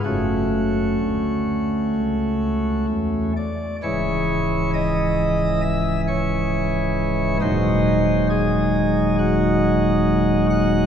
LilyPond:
<<
  \new Staff \with { instrumentName = "Pipe organ" } { \time 4/4 \key fis \minor \tempo 4 = 67 fis'2. r8 d''8 | \key cis \minor cis''4 dis''4 e''8 cis''4. | bis'4 gis'4 fis'4. fis''8 | }
  \new Staff \with { instrumentName = "Pipe organ" } { \clef bass \time 4/4 \key fis \minor << { <a cis'>2.~ <a cis'>8 r8 | \key cis \minor <cis, e gis e'>1 | <dis, fis gis dis'>1 | } \\ { <fis,, fis,>4 d,4 cis,4 e,8 r8 | cis,,1 | dis,,1 | } >> }
>>